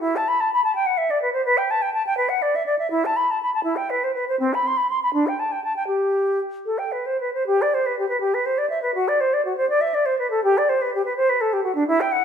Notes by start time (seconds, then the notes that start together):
0.00 E4
0.16 A5
0.28 B5
0.40 A5
0.53 B5
0.64 A5
0.75 G5
0.86 F#5
0.98 E5
1.10 D5
1.22 B4
1.33 C5
1.45 B4
1.58 G5
1.71 A5
1.82 G5
1.94 A5
2.07 G5
2.17 B4
2.29 F#5
2.42 D5
2.55 E5
2.66 D5
2.79 E5
2.91 E4
3.05 A5
3.17 B5
3.31 A5
3.43 B5
3.54 A5
3.64 E4
3.76 G5
3.90 B4
4.04 C5
4.15 B4
4.29 C5
4.40 C4
4.54 B5
4.67 C6
4.77 B5
4.90 C6
5.03 B5
5.14 D4
5.27 G5
5.40 A5
5.52 G5
5.64 A5
5.76 G5
5.87 G4
6.66 A4
6.78 G5
6.92 B4
7.06 C5
7.21 B4
7.34 C5
7.47 G4
7.62 D5
7.74 C5
7.86 B4
7.99 G4
8.09 B4
8.20 G4
8.34 B4
8.46 C5
8.58 D5
8.70 E5
8.82 B4
8.95 F#4
9.08 D5
9.20 C5
9.34 D5
9.45 F#4
9.57 C5
9.70 D5
9.81 E5
9.94 D5
10.06 C5
10.19 B4
10.30 A4
10.44 G4
10.58 D5
10.69 C5
10.82 B4
10.95 G4
11.05 B4
11.17 C5
11.30 B4
11.41 A4
11.53 G4
11.64 F#4
11.75 D4
11.87 E4
12.01 G5
12.12 F#5